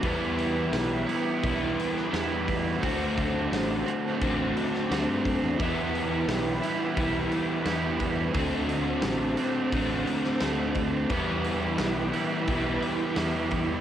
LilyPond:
<<
  \new Staff \with { instrumentName = "Analog synth pad" } { \time 4/4 \key e \minor \tempo 4 = 87 << { d'''1~ | d'''1~ | d'''1 | d'''1~ |
d'''1 | } \\ { <e' b' g''>1 | <c'' a''>1 | <e' b' g''>1 | <c'' a''>1 |
<e' b' g''>1 | } >> }
  \new Staff \with { instrumentName = "Overdriven electric guitar" } { \time 4/4 \key e \minor <e g b e'>2 <e g b e'>2 | <d a c' fis'>2 <d a c' fis'>2 | <e g b e'>2 <e g b e'>2 | <d a c' fis'>2 <d a c' fis'>2 |
<e g b e'>2 <e g b e'>2 | }
  \new Staff \with { instrumentName = "Overdriven electric guitar" } { \time 4/4 \key e \minor <e g b e'>4. <e g b e'>4. <e g b e'>4 | <d a c' fis'>4. <d a c' fis'>4. <d a c' fis'>4 | <e g b e'>4. <e g b e'>4. <e g b e'>4 | <d a c' fis'>4. <d a c' fis'>4. <d a c' fis'>4 |
<e g b e'>4. <e g b e'>4. <e g b e'>4 | }
  \new Staff \with { instrumentName = "Fingered electric bass" } { \clef bass \time 4/4 \key e \minor e,4 b,,8 r8 b,,8 r8 e,4 | d,4 a,,8 r8 a,,8 r8 d,16 g,16 fis,16 e,16 | e,4 b,,8 r8 b,,8 r8 e,4 | d,4 a,,8 r8 a,,8 r8 d,4 |
e,4 b,,8 r8 b,,8 r8 e,4 | }
  \new DrumStaff \with { instrumentName = "Drums" } \drummode { \time 4/4 <hho bd>8 hho8 <hho sn>8 hho8 <hho bd>8 hho16 sn16 <hho sn>8 <hho bd>8 | <hho bd>8 <hho bd>8 <hho sn>8 hho8 <hho bd>8 hho16 sn16 <hho sn>8 <hho bd>8 | <hho bd>8 hho8 <hho sn>8 hho8 <hho bd>8 hho8 <hho sn>8 <hho bd>8 | <hho bd>8 hho8 <hho sn>8 hho8 <hho bd>8 hho16 sn16 <hho sn>8 <hho bd>8 |
<hho bd>8 hho8 <hho sn>8 hho8 <hho bd>8 hho8 <hho sn>8 <hho bd>8 | }
>>